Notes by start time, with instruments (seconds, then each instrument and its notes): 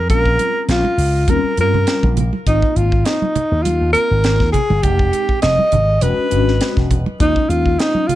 0.09 slap bass A#1, tine electric piano G#3 C4 C#4 F4, alto saxophone A#4, kick, closed hi-hat
0.26 kick
0.39 closed hi-hat, high conga
0.68 slap bass A#1, alto saxophone F4, snare, closed hi-hat
0.85 high conga
0.98 slap bass C#2, open hi-hat
1.27 slap bass D#2, tine electric piano G3 C4 C#4 F4, alto saxophone A#4, kick, closed hi-hat, high conga
1.44 muted slap bass stroke
1.57 slap bass G2, tine electric piano G3 C4 C#4 F4, alto saxophone A#4, closed hi-hat
1.74 low conga
1.87 snare, closed hi-hat
2.03 slap bass A#1, kick, high conga
2.17 closed hi-hat, low conga
2.33 high conga
2.46 slap bass G#1, tine electric piano A#3 C4 D#4 F4, alto saxophone D#4, kick, closed hi-hat
2.62 kick
2.76 slap bass G#1, alto saxophone F4, closed hi-hat
2.92 kick
3.05 alto saxophone D#4, snare, closed hi-hat
3.22 high conga
3.36 closed hi-hat, low conga
3.52 slap bass D#2
3.62 alto saxophone F4, closed hi-hat, high conga
3.81 slap bass D#2
3.93 tine electric piano A#3 C4 D#4 F4, alto saxophone A#4, muted slap bass stroke, closed hi-hat
4.11 slap bass G#1
4.24 snare, closed hi-hat
4.40 slap bass D#2, kick, snare
4.52 alto saxophone G#4, kick, closed hi-hat, low conga
4.70 slap bass G1, high conga
4.82 slap bass F1, tine electric piano G#3 C4 D#4 G4, alto saxophone G4, kick, closed hi-hat
4.99 kick
5.13 closed hi-hat
5.29 kick
5.42 slap bass F1, alto saxophone D#5, snare, closed hi-hat
5.59 high conga
5.72 slap bass G#1, closed hi-hat, low conga
6.01 slap bass E1, tine electric piano G#3 C#4 D4 F#4, alto saxophone B4, closed hi-hat, high conga
6.18 muted slap bass stroke
6.30 slap bass G#1, tine electric piano G#3 C#4 D4 F#4, closed hi-hat
6.48 snare
6.61 snare, closed hi-hat
6.77 slap bass E1, kick, snare
6.91 kick, closed hi-hat, low conga
7.06 high conga
7.19 slap bass D#2, tine electric piano G#3 A#3 C#4 F4, alto saxophone D#4, kick, closed hi-hat
7.36 kick
7.49 slap bass D#2, alto saxophone F4, closed hi-hat
7.66 kick
7.79 alto saxophone D#4, snare, closed hi-hat
7.95 high conga
8.07 alto saxophone F4, closed hi-hat, low conga